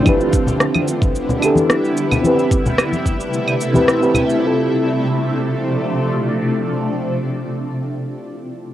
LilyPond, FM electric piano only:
\new Staff \with { instrumentName = "FM electric piano" } { \time 4/4 \key d \dorian \tempo 4 = 110 <d' e' g' b'>2~ <d' e' g' b'>8 <d' e' g' a'>4. | <c' e' g' b'>2~ <c' e' g' b'>8 r16 <c' e' g' b'>8 <c' e' g' b'>8. | <c' e' f' a'>1~ | <c' e' f' a'>1 | }